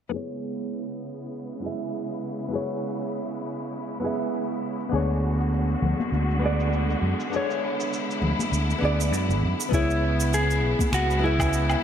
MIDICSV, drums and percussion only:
0, 0, Header, 1, 2, 480
1, 0, Start_track
1, 0, Tempo, 600000
1, 101, Time_signature, 4, 2, 24, 8
1, 9467, End_track
2, 0, Start_track
2, 0, Title_t, "Drums"
2, 587, Note_on_c, 9, 69, 50
2, 667, Note_off_c, 9, 69, 0
2, 1067, Note_on_c, 9, 69, 47
2, 1147, Note_off_c, 9, 69, 0
2, 1441, Note_on_c, 9, 69, 60
2, 1521, Note_off_c, 9, 69, 0
2, 1548, Note_on_c, 9, 69, 51
2, 1628, Note_off_c, 9, 69, 0
2, 1683, Note_on_c, 9, 69, 29
2, 1763, Note_off_c, 9, 69, 0
2, 1923, Note_on_c, 9, 69, 58
2, 2003, Note_off_c, 9, 69, 0
2, 2026, Note_on_c, 9, 69, 48
2, 2106, Note_off_c, 9, 69, 0
2, 2164, Note_on_c, 9, 69, 29
2, 2244, Note_off_c, 9, 69, 0
2, 2401, Note_on_c, 9, 69, 62
2, 2481, Note_off_c, 9, 69, 0
2, 2507, Note_on_c, 9, 69, 47
2, 2587, Note_off_c, 9, 69, 0
2, 2643, Note_on_c, 9, 69, 30
2, 2723, Note_off_c, 9, 69, 0
2, 2880, Note_on_c, 9, 69, 60
2, 2960, Note_off_c, 9, 69, 0
2, 2989, Note_on_c, 9, 69, 46
2, 3069, Note_off_c, 9, 69, 0
2, 3124, Note_on_c, 9, 69, 28
2, 3204, Note_off_c, 9, 69, 0
2, 3366, Note_on_c, 9, 69, 58
2, 3446, Note_off_c, 9, 69, 0
2, 3469, Note_on_c, 9, 69, 52
2, 3549, Note_off_c, 9, 69, 0
2, 3603, Note_on_c, 9, 69, 31
2, 3683, Note_off_c, 9, 69, 0
2, 3841, Note_on_c, 9, 69, 60
2, 3921, Note_off_c, 9, 69, 0
2, 3947, Note_on_c, 9, 69, 54
2, 4027, Note_off_c, 9, 69, 0
2, 4083, Note_on_c, 9, 69, 29
2, 4163, Note_off_c, 9, 69, 0
2, 4324, Note_on_c, 9, 69, 65
2, 4404, Note_off_c, 9, 69, 0
2, 4428, Note_on_c, 9, 69, 54
2, 4508, Note_off_c, 9, 69, 0
2, 4564, Note_on_c, 9, 69, 32
2, 4644, Note_off_c, 9, 69, 0
2, 4659, Note_on_c, 9, 64, 82
2, 4739, Note_off_c, 9, 64, 0
2, 4798, Note_on_c, 9, 63, 87
2, 4804, Note_on_c, 9, 69, 60
2, 4878, Note_off_c, 9, 63, 0
2, 4884, Note_off_c, 9, 69, 0
2, 4908, Note_on_c, 9, 69, 52
2, 4988, Note_off_c, 9, 69, 0
2, 5042, Note_on_c, 9, 69, 29
2, 5122, Note_off_c, 9, 69, 0
2, 5281, Note_on_c, 9, 69, 60
2, 5361, Note_off_c, 9, 69, 0
2, 5385, Note_on_c, 9, 69, 53
2, 5465, Note_off_c, 9, 69, 0
2, 5522, Note_on_c, 9, 69, 30
2, 5602, Note_off_c, 9, 69, 0
2, 5761, Note_on_c, 9, 69, 63
2, 5841, Note_off_c, 9, 69, 0
2, 5865, Note_on_c, 9, 69, 49
2, 5945, Note_off_c, 9, 69, 0
2, 6004, Note_on_c, 9, 69, 31
2, 6084, Note_off_c, 9, 69, 0
2, 6243, Note_on_c, 9, 69, 64
2, 6323, Note_off_c, 9, 69, 0
2, 6346, Note_on_c, 9, 69, 53
2, 6426, Note_off_c, 9, 69, 0
2, 6486, Note_on_c, 9, 69, 33
2, 6566, Note_off_c, 9, 69, 0
2, 6577, Note_on_c, 9, 64, 67
2, 6657, Note_off_c, 9, 64, 0
2, 6714, Note_on_c, 9, 63, 85
2, 6722, Note_on_c, 9, 69, 59
2, 6794, Note_off_c, 9, 63, 0
2, 6802, Note_off_c, 9, 69, 0
2, 6827, Note_on_c, 9, 69, 50
2, 6907, Note_off_c, 9, 69, 0
2, 6963, Note_on_c, 9, 69, 31
2, 7043, Note_off_c, 9, 69, 0
2, 7204, Note_on_c, 9, 69, 63
2, 7284, Note_off_c, 9, 69, 0
2, 7308, Note_on_c, 9, 69, 52
2, 7388, Note_off_c, 9, 69, 0
2, 7443, Note_on_c, 9, 69, 31
2, 7523, Note_off_c, 9, 69, 0
2, 7682, Note_on_c, 9, 69, 65
2, 7762, Note_off_c, 9, 69, 0
2, 7778, Note_on_c, 9, 36, 97
2, 7787, Note_on_c, 9, 69, 51
2, 7858, Note_off_c, 9, 36, 0
2, 7867, Note_off_c, 9, 69, 0
2, 7924, Note_on_c, 9, 69, 32
2, 8004, Note_off_c, 9, 69, 0
2, 8161, Note_on_c, 9, 69, 65
2, 8241, Note_off_c, 9, 69, 0
2, 8267, Note_on_c, 9, 69, 51
2, 8347, Note_off_c, 9, 69, 0
2, 8404, Note_on_c, 9, 69, 31
2, 8484, Note_off_c, 9, 69, 0
2, 8633, Note_on_c, 9, 36, 91
2, 8642, Note_on_c, 9, 63, 76
2, 8644, Note_on_c, 9, 69, 61
2, 8713, Note_off_c, 9, 36, 0
2, 8722, Note_off_c, 9, 63, 0
2, 8724, Note_off_c, 9, 69, 0
2, 8743, Note_on_c, 9, 26, 72
2, 8749, Note_on_c, 9, 69, 50
2, 8823, Note_off_c, 9, 26, 0
2, 8829, Note_off_c, 9, 69, 0
2, 8884, Note_on_c, 9, 69, 28
2, 8964, Note_off_c, 9, 69, 0
2, 9113, Note_on_c, 9, 36, 97
2, 9118, Note_on_c, 9, 77, 76
2, 9125, Note_on_c, 9, 69, 65
2, 9193, Note_off_c, 9, 36, 0
2, 9198, Note_off_c, 9, 77, 0
2, 9205, Note_off_c, 9, 69, 0
2, 9225, Note_on_c, 9, 69, 54
2, 9305, Note_off_c, 9, 69, 0
2, 9356, Note_on_c, 9, 77, 68
2, 9363, Note_on_c, 9, 69, 30
2, 9436, Note_off_c, 9, 77, 0
2, 9443, Note_off_c, 9, 69, 0
2, 9467, End_track
0, 0, End_of_file